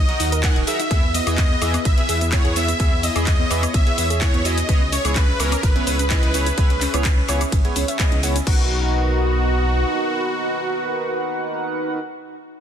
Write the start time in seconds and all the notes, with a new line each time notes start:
Already playing: A#1 D#4 F#4 A#4 D#5
0.09 D#4 F#4 A#4 F#5, closed hi-hat
0.20 D#2 D#4, open hi-hat, cabasa
0.32 A#4, closed hi-hat, cabasa
0.43 D#4 F#4 A#4 F#5 G#5, kick, clap, closed hi-hat, ride, cabasa
0.56 D#1 D#4, closed hi-hat
0.67 D#4 F#4 G#4 A#4 E5 F#5, open hi-hat, cabasa
0.79 D#4, closed hi-hat, cabasa
0.91 E2 B3 E4 G#4 B4 E5, kick, closed hi-hat, ride, cabasa
1.03 B3
1.14 B3 D#5, open hi-hat, cabasa
1.27 E2 B3 E4 G#4 E5, closed hi-hat, cabasa, high woodblock
1.38 B3, kick, clap, closed hi-hat, ride, cabasa
1.50 B3
1.62 E2 B3 E4 G#4 E5, open hi-hat, cabasa, high woodblock
1.74 B3, closed hi-hat, cabasa, high woodblock
1.85 B1 B3 E5, kick, closed hi-hat, ride, cabasa
1.98 B3 E4 G#4 E5, closed hi-hat
2.09 E2 G#4, open hi-hat, cabasa
2.21 B3, closed hi-hat, cabasa
2.32 B3 E4 G#4 C#5 F#5, kick, clap, closed hi-hat, ride, cabasa
2.45 E2 G#4, closed hi-hat
2.56 B3 E4 G#4 E5, open hi-hat, cabasa
2.68 B3, closed hi-hat, cabasa
2.80 E2 B3 E4 G#4 C#5 E5, kick, closed hi-hat, ride, cabasa
2.92 B3
3.03 B3 D#5, open hi-hat, cabasa
3.16 E2 B3 E4 G#4 E5, closed hi-hat, cabasa, high woodblock
3.27 B3, kick, clap, closed hi-hat, ride, cabasa
3.39 B3
3.50 E2 B3 E4 G#4 B4 E5, open hi-hat, cabasa, high woodblock
3.63 B3, closed hi-hat, cabasa, high woodblock
3.74 B1 B3 E5, kick, closed hi-hat, ride, cabasa
3.87 B3 E4 G#4 E5, closed hi-hat
3.98 E2 B3, open hi-hat, cabasa
4.10 G#4, closed hi-hat, cabasa
4.21 B3 E4 G#4 C#5 F#5, kick, clap, closed hi-hat, ride, cabasa
4.34 E2 B3, closed hi-hat
4.45 B3 E4 F#4 G#4 D#5 E5, open hi-hat, cabasa
4.57 B3, closed hi-hat, cabasa
4.69 C#2 B3 C#4 E4 G#4 B4 C#5 E5, kick, closed hi-hat, ride, cabasa
4.81 C#4
4.92 C#4 C#5, open hi-hat, cabasa
5.05 C#2 B3 E4 G#4 C#5, closed hi-hat, cabasa, high woodblock
5.16 C#4 B4, kick, clap, closed hi-hat, ride, cabasa
5.28 C#4
5.40 C#2 B3 E4 G#4 A#4 B4 C#5, open hi-hat, cabasa, high woodblock
5.52 C#4, closed hi-hat, cabasa, high woodblock
5.63 G#1 C#4 B4, kick, closed hi-hat, ride, cabasa
5.76 B3 C#4 E4 G#4 C#5, closed hi-hat
5.87 C#2 B4, open hi-hat, cabasa
5.99 C#4, closed hi-hat, cabasa
6.10 B3 C#4 E4 G#4 D#5, kick, clap, closed hi-hat, ride, cabasa
6.23 C#2 B4, closed hi-hat
6.34 B3 C#4 E4 G#4 C#5, open hi-hat, cabasa
6.46 C#4, closed hi-hat, cabasa
6.58 C#2 B3 E4 G#4 B4 C#5, kick, closed hi-hat, ride, cabasa
6.70 C#4, closed hi-hat
6.81 C#4, clap, open hi-hat, cabasa
6.94 C#2 B3 E4 G#4 B4 C#5, closed hi-hat, cabasa, high woodblock
7.05 C#4, kick, clap, closed hi-hat, ride, cabasa
7.18 C#4
7.29 C#2 B3 E4 G#4 C#5, open hi-hat, cabasa, high woodblock
7.41 C#4, closed hi-hat, cabasa, high woodblock
7.52 G#1 C#4, kick, closed hi-hat, ride, cabasa
7.65 B3 E4 G#4 C#5, closed hi-hat
7.76 C#2 C#4, open hi-hat, cabasa
7.88 E5, closed hi-hat, cabasa
7.99 B3 C#4 E4 G#4 D#5, kick, clap, closed hi-hat, ride, cabasa
8.12 C#2 C#4, closed hi-hat
8.23 B3 E4 G#4 C#5 F#5, open hi-hat, cabasa
8.36 C#4, closed hi-hat, cabasa
8.47 B1 B3 D#4 F#4 A#4 B4 D#5 F#5 A#5, kick, crash